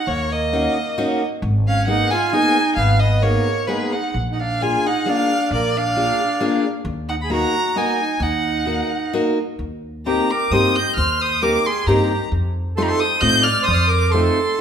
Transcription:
0.07 upright bass D#2, accordion A#3, violin C#5
0.31 accordion A#3, violin D#5
0.53 steel-string acoustic guitar A#3 C#4 D#4 F#4
0.98 steel-string acoustic guitar A#3 C#4 D#4 F#4
1.42 upright bass G#1
1.68 accordion C#4, violin F5
1.87 steel-string acoustic guitar A#3 B3 D#4 G#4, accordion D#4, violin F#5
2.11 accordion F4, violin G#5
2.32 steel-string acoustic guitar A#3 B3 D#4 G#4, accordion D#4, violin G#5
2.76 upright bass G#1, accordion B3, violin F5
3.00 accordion B3, violin D#5
3.21 accordion A#3, steel-string acoustic guitar A#3 B3 D#4 G#4, violin C#5
3.67 accordion G#3, steel-string acoustic guitar A#3 B3 D#4 G#4, violin B4
3.92 accordion D#4, violin F#5
4.14 upright bass A#1
4.32 accordion D#4, violin F#5
4.40 accordion D4, violin F5
4.61 steel-string acoustic guitar A#3 D4 F4 G#4, accordion F4, violin G#5
4.85 accordion D#4, violin F#5
5.06 steel-string acoustic guitar A#3 D4 F4 G#4, accordion D4, violin F5
5.51 upright bass A#1, accordion A#3, violin D5
5.77 accordion D4, violin F5
5.96 steel-string acoustic guitar A#3 D4 F4 G#4
6.40 steel-string acoustic guitar A#3 D4 F4 G#4
6.85 upright bass D#2
7.09 accordion D#4, violin F#5
7.22 accordion G#4, violin B5
7.30 steel-string acoustic guitar A#3 D#4 F#4 A#4, accordion F#4, violin A#5
7.75 steel-string acoustic guitar A#3 D#4 F#4 A#4, accordion D#4, violin G#5
8.20 upright bass D#2, accordion D#4, violin F#5
8.66 steel-string acoustic guitar A#3 D#4 F#4 A#4
9.13 steel-string acoustic guitar A#3 D#4 F#4 A#4
9.59 upright bass D#2
10.06 steel-string acoustic guitar A#3 C4 D#4 G4 A#4, accordion G4, violin A#5
10.30 accordion A#4, violin D6
10.51 upright bass G2, steel-string acoustic guitar A#3 C4 D#4 G4 A#4, accordion C5, violin D#6
10.76 accordion D#5, violin G6
10.96 upright bass D#2, accordion C5, violin F6
11.21 accordion C5, violin D#6
11.42 steel-string acoustic guitar A#3 C4 D#4 G4 A#4, accordion A#4, violin D6
11.66 accordion G#4, violin C6
11.87 upright bass G2, steel-string acoustic guitar A#3 C4 D#4 G4 A#4, accordion G4, violin A#5
12.32 upright bass F2
12.77 steel-string acoustic guitar A3 C4 D#4 F4 A4, accordion A4, violin C6
12.82 accordion G4, violin A#5
12.88 accordion A4, violin C6
12.99 accordion C5, violin D#6
13.20 upright bass A2, steel-string acoustic guitar A3 C4 D#4 F4 A4, accordion D#5, violin G6
13.42 accordion D5, violin F6
13.62 accordion C5, violin D#6
13.68 upright bass F2, accordion D5
13.73 accordion C5, violin D#6 F6
13.88 accordion A#4, violin D6
14.10 steel-string acoustic guitar A3, accordion A4, violin C6
14.14 steel-string acoustic guitar C4 D#4 F4 A4

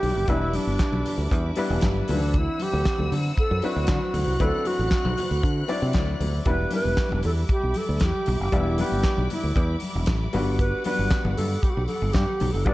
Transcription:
Already playing: grand piano G3 B3 D4 E4 B4, string section G3 E5 B5 D6, alto flute G4
0.03 fingered electric bass B1, open hi-hat, muted conga, high conga, low conga
0.16 fingered electric bass F#1
0.28 fingered electric bass E1, grand piano G3 B3 D4 E4 B4, alto flute E4, kick, closed hi-hat, low conga
0.53 alto flute D4, open hi-hat, muted conga, high conga
0.67 fingered electric bass G1
0.79 kick, snare, clap, closed hi-hat, muted conga
0.92 fingered electric bass B1, high conga
1.06 open hi-hat, muted conga, low conga
1.18 fingered electric bass D2
1.31 fingered electric bass E2, kick, closed hi-hat, muted conga
1.55 grand piano G3 B3 D4 E4 B4, open hi-hat, muted conga
1.70 fingered electric bass E1
1.81 fingered electric bass G1, kick, snare, clap, closed hi-hat, high conga
2.08 fingered electric bass D2, grand piano F3 C4 D4 E4 B4, string section C4 F#5 E6, open hi-hat, muted conga, high conga, low conga
2.12 grand piano E3, alto flute D4
2.34 alto flute E4, kick, closed hi-hat, muted conga, low conga
2.60 alto flute G4, open hi-hat, muted conga, high conga
2.73 fingered electric bass D2
2.85 kick, snare, clap, closed hi-hat
2.98 fingered electric bass D2, high conga
3.12 fingered electric bass D3, open hi-hat, muted conga, low conga
3.37 alto flute A4, kick, closed hi-hat
3.51 fingered electric bass F#2
3.62 grand piano F#3 C4 D4 E4 B4, alto flute F#4, open hi-hat
3.76 fingered electric bass D2
3.87 fingered electric bass D3, kick, snare, clap, closed hi-hat, high conga
4.14 fingered electric bass D2, string section F#6, open hi-hat, muted conga, high conga, low conga
4.27 fingered electric bass C2
4.40 fingered electric bass D2, grand piano F#3 C4 D4 E4 B4, alto flute A4, kick, closed hi-hat, muted conga, low conga
4.65 alto flute F#4, open hi-hat, high conga
4.79 fingered electric bass A1
4.91 kick, snare, clap, closed hi-hat, muted conga
5.05 fingered electric bass B1, high conga
5.17 open hi-hat, muted conga, low conga
5.31 fingered electric bass D2
5.43 fingered electric bass D3, kick, closed hi-hat
5.68 grand piano F#3 C4 D4 E4 D5, open hi-hat, muted conga
5.82 fingered electric bass C3
5.93 fingered electric bass D2, kick, snare, clap, closed hi-hat, muted conga, high conga
6.20 fingered electric bass D2, open hi-hat, muted conga, high conga, low conga
6.45 fingered electric bass E1, string section G3 E5 B5 D6, grand piano G3 B3 D4 E4 B4, alto flute B4, kick, closed hi-hat, muted conga
6.71 grand piano G3 B3 D4 E4 B4, alto flute B4, open hi-hat, high conga
6.85 fingered electric bass E1
6.97 kick, snare, clap, closed hi-hat, muted conga
7.09 fingered electric bass E1, high conga
7.23 fingered electric bass E2, alto flute A4, open hi-hat, muted conga, low conga
7.49 alto flute G4, kick, closed hi-hat, muted conga
7.63 fingered electric bass B1
7.74 alto flute A4, open hi-hat, muted conga, high conga
7.89 fingered electric bass D2
7.96 alto flute A4
8.00 fingered electric bass E2, kick, snare, clap, closed hi-hat, muted conga, high conga
8.05 alto flute G4
8.26 fingered electric bass B1, open hi-hat, muted conga, high conga, low conga
8.40 fingered electric bass F#1, alto flute G4
8.52 fingered electric bass E1, grand piano G3 B3 D4 E4 G4, alto flute E4, kick, closed hi-hat, muted conga
8.78 grand piano G3 B3 D4 E4 B4, alto flute G4, open hi-hat, muted conga, high conga
8.92 fingered electric bass G1
9.03 kick, snare, clap, closed hi-hat
9.17 fingered electric bass B1, high conga
9.30 alto flute E4, open hi-hat, low conga
9.44 fingered electric bass D2
9.56 fingered electric bass E2, kick, closed hi-hat
9.80 open hi-hat, high conga
9.95 fingered electric bass E1
10.06 fingered electric bass A1, kick, snare, clap, closed hi-hat, high conga
10.33 fingered electric bass G1, grand piano G3 B3 D4 F#4 B4, string section F#5, open hi-hat, muted conga, high conga, low conga
10.59 alto flute B4, kick, closed hi-hat
10.84 grand piano G3 B3 D4 F#4 B4, alto flute B4, open hi-hat, muted conga, high conga
10.99 fingered electric bass G1
11.11 kick, snare, clap, closed hi-hat
11.25 fingered electric bass G1, high conga
11.37 fingered electric bass G2, alto flute A4, open hi-hat, low conga
11.62 alto flute G4, kick, closed hi-hat, muted conga
11.70 alto flute F#4
11.74 fingered electric bass B1, alto flute G4
11.87 alto flute A4, open hi-hat, muted conga, high conga
12.02 fingered electric bass G1
12.13 fingered electric bass G2, alto flute G4, kick, snare, clap, closed hi-hat, muted conga, high conga
12.40 fingered electric bass B1, open hi-hat, muted conga, high conga, low conga
12.52 fingered electric bass F#1, alto flute A4
12.65 fingered electric bass G1, grand piano G3 B3 D4 F#4 D5, alto flute B4, kick, closed hi-hat, muted conga

